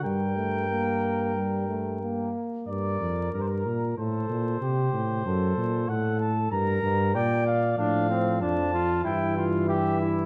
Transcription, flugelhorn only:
\new Staff \with { instrumentName = "Flugelhorn" } { \time 4/4 \key g \minor \tempo 4 = 94 bes'2.~ bes'8 r8 | bes'2 a'4 g'4 | a'4 a'4 bes'4 d''4 | d'8 c'8 d'8 f'8 e'8 f'8 g'8 e'8 | }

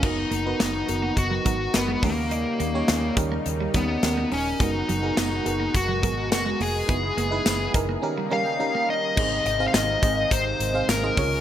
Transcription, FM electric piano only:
<<
  \new Staff \with { instrumentName = "FM electric piano" } { \time 4/4 \key dis \minor \tempo 4 = 105 << { <gis' cis''>16 r2. r8. | r1 | r1 | r2 r8 ais''16 g''16 eis''4 |
\key aes \major r1 | } \\ { <b dis' fis' ais'>8 r16 <b dis' fis' b'>8 r16 <b dis' fis' ais'>8. r16 <b dis' fis' ais'>16 r16 <b dis' fis' ais'>8 <cis' dis' g' ais'>8~ | <cis' dis' g' ais'>8 r16 <cis' dis' g' cis''>8 r16 <cis' dis' g' ais'>8. r16 <cis' dis' g' ais'>16 r16 <cis' dis' g' ais'>8. r16 | <b fis' gis' ais'>8 r16 <b fis' gis' ais'>8 r16 <b fis' gis' ais'>8. r16 <b fis' gis' ais'>16 r16 <b fis' gis' ais'>8. r16 | <dis' e' gis' b'>8 r16 <dis' e' gis' b'>8 r16 <dis' e' gis' ais'>8 <cis' dis' g' ais'>8 <cis' dis' g' ais'>16 r16 <cis' dis' g' ais'>8. r16 |
<c' ees' aes' c'' ees''>8 r16 <c' ees' aes' c'' f''>8 r16 <c' ees' aes' c'' ees''>4 r16 <c' ees' aes' c'' f''>16 r16 <c' ees' aes' c'' ees''>16 <des' f' aes' bes' des''>8 | } >> }
  \new Staff \with { instrumentName = "FM electric piano" } { \clef bass \time 4/4 \key dis \minor r2. r8 dis8~ | dis4 r2. | r1 | r2 dis4. r8 |
\key aes \major aes,4. r2 des8 | }
>>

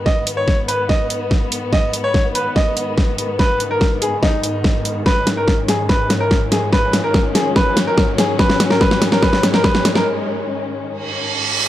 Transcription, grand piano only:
\new Staff \with { instrumentName = "Grand piano" } { \time 4/4 \key gis \minor \tempo 4 = 144 dis''8 r16 cis''8 r16 b'16 r16 dis''4.~ dis''16 r16 | dis''8 r16 cis''8 r16 b'16 r16 dis''4.~ dis''16 r16 | b'8 r16 ais'8 r16 gis'16 r16 dis'4.~ dis'16 r16 | b'8 r16 ais'8 r16 gis'16 r16 b'8 r16 ais'8 r16 gis'16 r16 |
b'8 r16 ais'8 r16 gis'16 r16 b'8 r16 ais'8 r16 gis'16 r16 | b'8 r16 ais'16 b'8 r16 ais'16 b'8 r16 ais'16 b'8 r16 ais'16 | r1 | }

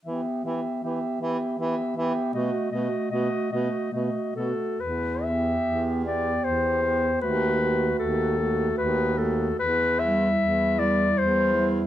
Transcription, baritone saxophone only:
\new Staff \with { instrumentName = "Baritone saxophone" } { \clef bass \time 3/4 \key e \minor \tempo 4 = 77 e8 e8 e8 e8 e8 e8 | b,8 b,8 b,8 b,8 b,8 b,8 | e,4 e,4 e,4 | dis,4 dis,4 dis,4 |
e,4 e,4 e,4 | }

